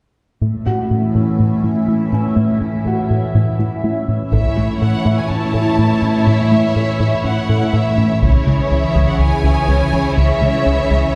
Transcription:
0.42 analog synth bass A2, cello section A2, analog synth pad E3 C#4 E4 E5, synth arpeggio sound A3
0.66 analog synth bass A2, synth arpeggio sound C#4, felt piano F#4 F#5
0.91 analog synth bass A2, synth arpeggio sound A4
1.15 analog synth bass A2, synth arpeggio sound A4
1.39 analog synth bass A2, synth arpeggio sound A3
1.64 analog synth bass A3, synth arpeggio sound E4
1.88 analog synth bass A3, synth arpeggio sound E4
2.12 analog synth bass A2, synth arpeggio sound C#4, felt piano G#5
2.36 analog synth bass A2, synth arpeggio sound A3
2.61 analog synth bass A2, synth arpeggio sound C#4
2.85 analog synth bass A2, felt piano F#4 F#5, synth arpeggio sound A4
3.10 analog synth bass A2, synth arpeggio sound A4
3.35 analog synth bass A2, synth arpeggio sound A3
3.59 analog synth bass A3, synth arpeggio sound E4
3.84 analog synth bass A3, synth arpeggio sound E4
4.08 analog synth bass A2, synth arpeggio sound C#4
4.32 cello section A2, analog synth bass A2, analog synth pad E3 C#4 E4 E5, synth arpeggio sound A3, violin section E4 C#5 E5, taiko
4.57 analog synth bass A3, synth arpeggio sound E4
4.82 analog synth bass A2, synth arpeggio sound A4, violin section F#5
5.05 analog synth bass A2, synth arpeggio sound A3, felt piano E5
5.19 violin section G#5
5.30 analog synth bass A2, synth arpeggio sound C#4, violin section A5
5.54 analog synth bass A2, felt piano E4 E5, synth arpeggio sound A4
5.79 analog synth bass A2, synth arpeggio sound A3
6.02 analog synth bass A2, synth arpeggio sound C#4
6.27 analog synth bass A2, synth arpeggio sound A3, violin section E5
6.52 analog synth bass A3, synth arpeggio sound E4
6.76 analog synth bass A2, synth arpeggio sound A4, felt piano C#5
7.00 analog synth bass A2, synth arpeggio sound A3
7.24 analog synth bass A2, synth arpeggio sound C#4, violin section F#5
7.49 analog synth bass A2, synth arpeggio sound A4
7.73 analog synth bass A2, synth arpeggio sound A3, violin section E5
7.98 analog synth bass A2, synth arpeggio sound C#4
8.22 analog synth bass C#2, cello section C#3, synth arpeggio sound C#3, analog synth pad E3 C#4 G#4 C#5, violin section E4 C#5, taiko
8.47 analog synth bass C#3, synth arpeggio sound G#3
8.71 analog synth bass C#2, synth arpeggio sound C#4, violin section E5
8.95 analog synth bass C#2, synth arpeggio sound C#3, taiko
9.09 violin section F#5
9.19 analog synth bass C#2, synth arpeggio sound E3, violin section G#5
9.44 analog synth bass C#2, synth arpeggio sound C#4, felt piano E5
9.68 analog synth bass C#2, synth arpeggio sound C#3
9.92 analog synth bass C#2, synth arpeggio sound E3
10.17 analog synth bass C#2, synth arpeggio sound C#3, violin section E5
10.41 analog synth bass C#3, synth arpeggio sound G#3
10.65 analog synth bass C#2, synth arpeggio sound C#4
10.91 analog synth bass C#2, synth arpeggio sound C#3

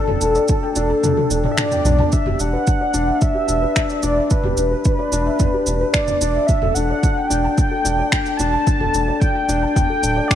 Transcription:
Already playing: felt piano D4 A4 D5 G5 A5, soft synth lead A4
0.08 sub bass E1, felt piano A4, mid tom
0.21 sub bass E1, felt piano D4, shaker
0.35 felt piano D5, shaker
0.48 felt piano D4, kick, shaker
0.63 felt piano G5
0.76 sub bass E1, felt piano D4, shaker
0.90 felt piano A5
1.03 felt piano D4, mid tom, high tom, shaker
1.17 felt piano A4, high tom
1.30 sub bass E1, felt piano D4, shaker
1.44 felt piano D5, mid tom
1.51 soft synth lead E5
1.58 felt piano D4, soft synth lead D5, finger snap, mid tom, shaker
1.72 felt piano G5, mid tom, shaker
1.85 sub bass B1, felt piano D4, mid tom, shaker
1.99 felt piano A5, mid tom
2.12 felt piano D4, soft synth lead E5, kick, shaker
2.26 sub bass E1, felt piano G4, mid tom
2.39 sub bass E1, felt piano D4, soft synth lead F#5, shaker
2.53 felt piano B4
2.67 felt piano D4, kick, shaker
2.81 felt piano D5
2.94 sub bass E1, felt piano D4, shaker
3.08 felt piano E5
3.21 felt piano D4, soft synth lead E5, kick, shaker
3.34 felt piano G4
3.48 sub bass E1, felt piano D4, shaker
3.62 felt piano B4
3.75 felt piano D4, finger snap, kick, shaker
3.90 felt piano D5, shaker
4.03 sub bass E1, felt piano D4, soft synth lead D5, shaker
4.17 felt piano E5
4.30 felt piano D4, soft synth lead B4, kick, shaker
4.44 sub bass E1, felt piano G4, mid tom
4.57 sub bass E1, felt piano D4, shaker
4.71 felt piano B4
4.85 felt piano D4, kick, shaker
4.99 felt piano D5
5.12 sub bass E1, felt piano D4, shaker
5.26 felt piano E5
5.39 felt piano D4, kick, mid tom, shaker
5.53 felt piano G4
5.66 sub bass E1, felt piano D4, shaker
5.81 felt piano B4
5.93 felt piano D4, soft synth lead D5, finger snap, kick, shaker
6.08 felt piano D5, mid tom, shaker
6.21 sub bass E1, felt piano D4, shaker
6.35 felt piano E5
6.47 felt piano D4, soft synth lead E5, kick, shaker
6.62 sub bass E1, felt piano A4, mid tom
6.74 sub bass E1, felt piano D4, soft synth lead F#5, shaker
6.90 felt piano D5
7.03 felt piano D4, kick, shaker
7.17 felt piano G5
7.28 sub bass E1, felt piano D4, soft synth lead G5, shaker
7.44 felt piano A5
7.57 felt piano D4, kick, shaker
7.71 felt piano A4
7.85 sub bass E1, felt piano D4, shaker
7.99 felt piano D5
8.12 felt piano D4, finger snap, kick, shaker
8.26 felt piano G5, shaker
8.37 sub bass E1, felt piano D4, soft synth lead A5, shaker
8.53 felt piano A5
8.67 felt piano D4, kick, shaker
8.80 sub bass E1, felt piano A4, mid tom
8.94 sub bass E1, felt piano D4, shaker
9.08 felt piano D5
9.20 felt piano D4, soft synth lead G5, kick, shaker
9.35 felt piano G5
9.48 sub bass E1, felt piano D4, shaker
9.62 felt piano A5
9.75 felt piano D4, soft synth lead G5, kick, mid tom, shaker
9.90 felt piano A4
10.03 sub bass D1, felt piano D4, shaker
10.16 felt piano D5
10.28 felt piano D4, soft synth lead D5, finger snap, kick, shaker

